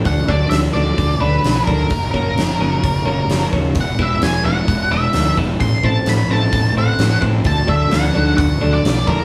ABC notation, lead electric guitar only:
X:1
M:4/4
L:1/16
Q:1/4=130
K:Dlyd
V:1 name="Lead electric guitar"
f2 d2 e2 d4 B4 ^A2- | ^A2 A12 z2 | f2 e2 g2 f4 e4 z2 | =c'2 a2 b2 a4 f4 z2 |
a2 e2 f4 f3 d3 ^A2 |]